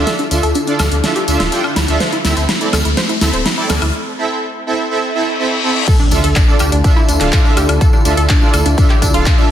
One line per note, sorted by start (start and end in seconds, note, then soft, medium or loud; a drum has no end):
0.00 1.97 D3 medium
0.00 1.97 D4 medium
0.00 3.90 E4 medium
0.00 1.97 F4 medium
0.00 1.97 A4 medium
0.00 riser medium
0.07 0.14 A4 medium
0.07 snare medium
0.07 closed hi-hat medium
0.07 tambourine medium
0.19 0.26 D4 medium
0.19 closed hi-hat soft
0.19 tambourine soft
0.31 0.40 D2 medium
0.31 0.38 D4 medium
0.31 0.38 F4 medium
0.31 0.38 A4 medium
0.31 0.38 E5 medium
0.31 open hi-hat loud
0.31 tambourine medium
0.43 0.53 D2 medium
0.43 0.50 A4 medium
0.43 closed hi-hat medium
0.43 tambourine soft
0.55 0.62 D4 medium
0.55 closed hi-hat medium
0.55 tambourine medium
0.67 0.74 D4 medium
0.67 0.75 D4 medium
0.67 0.75 F4 medium
0.67 0.75 A4 medium
0.67 0.75 D5 medium
0.67 closed hi-hat soft
0.67 tambourine soft
0.79 0.89 D2 medium
0.79 0.86 A4 loud
0.79 snare medium
0.79 open hi-hat loud
0.79 tambourine loud
0.79 high woodblock medium
0.92 1.01 D2 medium
0.92 0.99 D4 medium
0.92 closed hi-hat medium
0.92 tambourine soft
1.04 1.11 D4 medium
1.04 1.11 F4 medium
1.04 1.11 A4 medium
1.04 1.11 E5 loud
1.04 snare medium
1.04 closed hi-hat medium
1.04 tambourine medium
1.16 1.23 G4 medium
1.16 closed hi-hat soft
1.16 tambourine soft
1.28 1.37 D2 medium
1.28 1.35 D4 medium
1.28 1.39 D4 medium
1.28 1.39 F4 medium
1.28 1.39 A4 medium
1.28 1.39 E5 medium
1.28 open hi-hat loud
1.28 tambourine loud
1.40 1.49 D1 medium
1.40 1.47 F4 medium
1.40 snare medium
1.40 closed hi-hat medium
1.40 tambourine soft
1.52 1.59 D4 medium
1.52 1.59 D4 loud
1.52 1.59 F4 medium
1.52 1.59 A4 medium
1.52 1.59 G5 loud
1.52 closed hi-hat medium
1.52 tambourine medium
1.64 1.71 D4 medium
1.64 tambourine soft
1.64 high woodblock medium
1.76 1.86 D2 medium
1.76 1.83 E4 medium
1.76 snare medium
1.76 open hi-hat loud
1.76 tambourine loud
1.88 1.98 D2 medium
1.88 1.95 D4 medium
1.88 1.99 D4 loud
1.88 1.99 F4 medium
1.88 1.99 A4 medium
1.88 1.99 E5 loud
1.88 closed hi-hat medium
1.88 tambourine soft
2.00 3.92 A3 medium
2.00 3.92 C4 medium
2.00 2.07 C5 medium
2.00 snare medium
2.00 closed hi-hat medium
2.00 tambourine medium
2.13 2.20 E4 medium
2.13 closed hi-hat soft
2.13 tambourine soft
2.25 2.34 D2 medium
2.25 2.32 C4 medium
2.25 2.32 E4 medium
2.25 2.32 A4 medium
2.25 2.32 E5 medium
2.25 snare medium
2.25 open hi-hat loud
2.25 tambourine medium
2.37 2.46 D2 medium
2.37 2.44 C5 medium
2.37 closed hi-hat medium
2.37 tambourine soft
2.49 2.56 E4 medium
2.49 snare medium
2.49 closed hi-hat medium
2.49 tambourine medium
2.61 2.68 C4 medium
2.61 2.68 E4 medium
2.61 2.68 A4 medium
2.61 2.68 D5 medium
2.61 closed hi-hat soft
2.61 tambourine soft
2.73 2.82 D2 medium
2.73 2.80 A4 medium
2.73 snare medium
2.73 open hi-hat loud
2.73 tambourine loud
2.73 high woodblock medium
2.85 2.94 D2 medium
2.85 2.92 E4 medium
2.85 closed hi-hat medium
2.85 tambourine soft
2.97 3.04 C5 medium
2.97 snare medium
2.97 closed hi-hat medium
2.97 tambourine medium
3.09 3.16 E4 medium
3.09 closed hi-hat soft
3.09 tambourine soft
3.21 3.31 D2 loud
3.21 3.29 C4 medium
3.21 3.28 E4 medium
3.21 3.29 E4 medium
3.21 3.29 A4 medium
3.21 3.29 E5 medium
3.21 snare medium
3.21 open hi-hat loud
3.21 tambourine loud
3.33 3.43 D1 medium
3.33 3.40 C5 medium
3.33 closed hi-hat soft
3.33 tambourine soft
3.46 3.53 E4 medium
3.46 snare medium
3.46 closed hi-hat medium
3.46 tambourine medium
3.58 3.65 C4 medium
3.58 3.65 E4 medium
3.58 3.65 A4 medium
3.58 3.65 D5 medium
3.58 tambourine soft
3.69 3.79 D2 loud
3.69 3.77 A4 medium
3.69 snare medium
3.69 open hi-hat loud
3.69 tambourine loud
3.69 high woodblock medium
3.82 3.91 D2 medium
3.82 3.89 E4 medium
3.82 closed hi-hat medium
3.82 tambourine soft
3.82 high woodblock medium
4.18 4.25 C4 medium
4.18 4.25 E4 medium
4.18 4.25 A4 medium
4.18 4.25 E5 medium
4.67 4.74 C4 medium
4.67 4.74 E4 medium
4.67 4.74 A4 medium
4.67 4.74 E5 medium
4.91 4.98 C4 medium
4.91 4.98 E4 medium
4.91 4.98 A4 medium
4.91 4.98 E5 medium
4.91 reverse cymbal medium
5.15 5.22 C4 medium
5.15 5.22 E4 medium
5.15 5.22 A4 medium
5.15 5.22 E5 medium
5.39 5.46 C4 medium
5.39 5.46 E4 medium
5.39 5.46 A4 medium
5.39 5.46 E5 medium
5.63 5.71 C4 medium
5.63 5.71 E4 medium
5.63 5.71 A4 medium
5.63 5.71 E5 loud
5.87 9.51 D3 medium
5.87 9.51 D4 medium
5.87 9.51 E4 medium
5.87 9.51 F4 medium
5.87 5.95 A4 loud
5.87 9.51 A4 medium
5.87 kick loud
5.87 closed hi-hat medium
5.87 crash loud
5.87 tambourine soft
5.87 impact medium
6.00 6.07 D4 medium
6.00 tambourine soft
6.11 6.21 D2 loud
6.11 6.19 D4 medium
6.11 6.19 F4 medium
6.11 6.19 A4 medium
6.11 6.19 E5 medium
6.11 open hi-hat loud
6.11 tambourine medium
6.24 6.33 D2 medium
6.24 6.31 A4 medium
6.24 closed hi-hat medium
6.24 tambourine soft
6.36 6.43 D4 medium
6.36 kick loud
6.36 clap loud
6.36 closed hi-hat medium
6.36 tambourine medium
6.48 6.55 D4 medium
6.48 6.55 F4 medium
6.48 6.55 A4 medium
6.48 6.55 D5 medium
6.48 tambourine soft
6.59 6.69 D2 medium
6.59 6.67 G4 loud
6.59 open hi-hat loud
6.59 tambourine loud
6.59 high woodblock medium
6.72 6.82 D2 medium
6.72 6.79 D4 medium
6.72 closed hi-hat medium
6.72 tambourine soft
6.84 6.91 D4 medium
6.84 6.91 D4 loud
6.84 6.91 F4 medium
6.84 6.91 A4 medium
6.84 6.91 E5 loud
6.84 kick loud
6.84 closed hi-hat medium
6.84 tambourine soft
6.96 7.03 E4 medium
6.96 tambourine soft
7.08 7.18 D2 loud
7.08 7.15 D4 medium
7.08 open hi-hat loud
7.08 tambourine medium
7.20 7.30 D1 medium
7.20 7.28 D4 medium
7.20 7.42 D4 loud
7.20 7.42 F4 medium
7.20 7.42 A4 medium
7.20 7.42 F5 loud
7.20 clap soft
7.20 closed hi-hat medium
7.20 tambourine soft
7.32 7.40 A4 medium
7.32 kick loud
7.32 clap loud
7.32 closed hi-hat medium
7.32 tambourine soft
7.45 7.52 D4 medium
7.45 7.52 F4 medium
7.45 7.52 A4 medium
7.45 7.52 E5 loud
7.45 tambourine soft
7.57 7.66 D2 medium
7.57 7.64 G4 medium
7.57 open hi-hat loud
7.57 tambourine medium
7.57 high woodblock medium
7.69 7.78 D2 medium
7.69 7.76 D4 medium
7.69 closed hi-hat medium
7.69 tambourine soft
7.69 high woodblock medium
7.81 7.88 A4 loud
7.81 kick loud
7.81 closed hi-hat medium
7.81 tambourine medium
7.93 8.00 D4 medium
7.93 tambourine soft
8.05 8.15 D2 medium
8.05 8.12 D4 medium
8.05 8.12 F4 medium
8.05 8.12 A4 medium
8.05 8.12 E5 medium
8.05 open hi-hat loud
8.05 tambourine loud
8.17 8.27 D2 medium
8.17 8.24 A4 loud
8.17 closed hi-hat medium
8.17 tambourine soft
8.29 8.36 D4 medium
8.29 kick loud
8.29 clap loud
8.29 closed hi-hat medium
8.29 tambourine soft
8.41 8.49 D4 medium
8.41 8.49 F4 medium
8.41 8.49 A4 medium
8.41 8.49 D5 medium
8.41 tambourine soft
8.53 8.63 D2 loud
8.53 8.61 A4 medium
8.53 open hi-hat loud
8.53 tambourine medium
8.53 high woodblock medium
8.66 8.75 D2 medium
8.66 8.73 D4 medium
8.66 closed hi-hat medium
8.66 tambourine soft
8.78 8.85 D4 medium
8.78 8.85 D4 loud
8.78 8.85 F4 medium
8.78 8.85 A4 medium
8.78 8.85 E5 loud
8.78 kick loud
8.78 closed hi-hat medium
8.78 tambourine medium
8.89 8.97 G4 medium
8.89 clap soft
8.89 tambourine soft
9.02 9.11 D2 loud
9.02 9.09 D4 medium
9.02 kick medium
9.02 open hi-hat loud
9.02 tambourine medium
9.14 9.24 D1 medium
9.14 9.35 D4 loud
9.14 9.21 F4 loud
9.14 9.35 F4 medium
9.14 9.35 A4 medium
9.14 9.35 F5 loud
9.14 closed hi-hat medium
9.14 tambourine soft
9.26 9.33 D4 medium
9.26 kick loud
9.26 clap loud
9.26 closed hi-hat medium
9.26 tambourine medium
9.38 9.45 D4 medium
9.38 9.46 D4 medium
9.38 9.46 F4 medium
9.38 9.46 A4 medium
9.38 9.46 E5 loud
9.38 tambourine soft